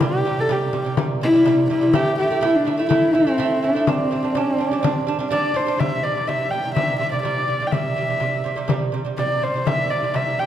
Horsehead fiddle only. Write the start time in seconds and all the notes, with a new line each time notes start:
0.03 G4
0.40 A4
0.52 G4
1.23 E4
1.71 E4
1.94 G4
2.19 G4
2.45 E4
2.55 D4
2.79 E4
2.90 E4
3.14 C4
3.63 D4
3.88 C4
4.39 C#4
4.53 C4
4.68 C#4
4.82 C4
5.32 D5
5.56 C5
5.79 E5
6.03 D5
6.27 E5
6.51 G5
6.75 E5
6.99 E5
7.12 D5
7.23 D5
7.66 G5
7.71 E5
9.18 D5
9.43 C5
9.67 E5
9.90 D5
10.16 E5
10.39 G5